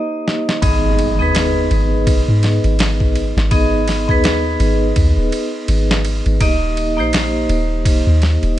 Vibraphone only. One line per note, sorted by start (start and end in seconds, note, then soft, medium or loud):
0.00 0.64 A#3 medium
0.00 0.62 D#4 medium
0.00 0.64 G4 medium
0.00 0.64 C5 loud
0.00 0.60 D#5 medium
0.62 1.14 B3 medium
0.62 1.15 D#4 medium
0.62 1.15 G#4 medium
0.62 1.15 D#5 medium
1.19 3.47 B3 medium
1.19 3.48 D#4 medium
1.19 3.48 G#4 medium
1.19 3.49 B4 loud
3.51 4.03 B3 medium
3.51 4.04 D#4 medium
3.51 4.04 G#4 medium
3.51 4.04 D#5 medium
4.08 6.36 B3 medium
4.08 6.37 D#4 medium
4.08 6.38 G#4 medium
4.08 6.38 B4 loud
6.41 6.93 A#3 medium
6.41 6.93 D#4 medium
6.41 6.93 G4 medium
6.41 6.94 D#5 loud
6.97 8.59 A#3 medium
6.97 8.59 D#4 medium
6.97 8.59 G4 medium
6.97 8.59 C5 loud